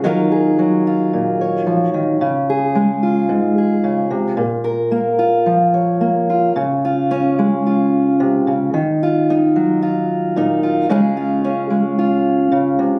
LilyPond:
\new Staff \with { instrumentName = "Steel-string acoustic guitar" } { \time 4/4 \key des \major \tempo 4 = 111 << { <ges ees' f' bes'>8 aes'4 f'4 des''4. | r8 aes'4 f'4 aes'4. | r8 bes'4 f'4 des''4 f'8 | r8 f'8 des'4 f'2 |
r8 f'8 ees'4 f'4 ees'8 f'8 | <aes des' f' aes'>8 f'8 des'4 f'2 | } \\ { ees4 ges4 bes,4 f8 ees8 | des4 aes4 aes,4 des8 c8 | bes,4 bes4 f4 bes4 | des4. aes4. c8 des8 |
ees4. ges4. bes,4 | des4. aes4. des8 c8 | } >> }